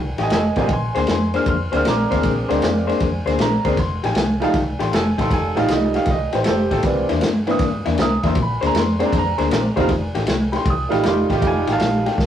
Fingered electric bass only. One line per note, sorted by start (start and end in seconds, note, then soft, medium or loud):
0.00 0.10 C2 loud
0.17 0.26 A1 medium
0.30 0.48 F1 medium
0.56 0.65 A1 medium
0.69 0.88 A#1 loud
0.95 1.04 D2 medium
1.08 1.35 F2 medium
1.47 1.65 F2 medium
1.73 1.81 D2 medium
1.86 2.03 A#1 medium
2.12 2.20 D2 medium
2.25 2.42 A#1 medium
2.50 2.58 D2 medium
2.63 2.89 F2 medium
3.01 3.19 F2 medium
3.26 3.35 D2 loud
3.38 3.56 A#1 medium
3.65 3.74 D2 loud
3.78 3.95 F1 loud
4.04 4.12 A1 medium
4.16 4.42 C2 medium
4.54 4.72 C2 medium
4.80 4.88 A1 loud
4.92 5.10 F1 medium
5.19 5.27 A1 loud
5.31 5.49 F1 medium
5.57 5.66 A1 medium
5.69 5.96 C2 loud
6.07 6.25 C2 medium
6.34 6.42 A1 medium
6.47 6.65 F1 medium
6.71 6.80 A1 loud
6.84 7.02 C2 medium
7.11 7.19 E2 medium
7.59 7.78 G2 medium
7.86 7.95 E2 loud
8.23 8.32 E2 medium
8.36 8.54 A#1 loud
8.62 8.71 D2 medium
8.73 9.00 F2 medium
9.13 9.31 F2 medium
9.38 9.47 D2 loud
9.50 9.69 A#1 medium
9.77 9.90 E1 medium
9.90 10.07 F1 loud
10.15 10.24 A1 medium
10.28 10.54 C2 medium
10.65 10.83 C2 medium
10.92 11.00 A1 loud
11.04 11.22 F1 medium
11.30 11.38 A1 loud
11.42 11.60 F1 loud
11.67 11.76 A1 medium
11.80 12.07 A#1 medium
12.18 12.26 C2 medium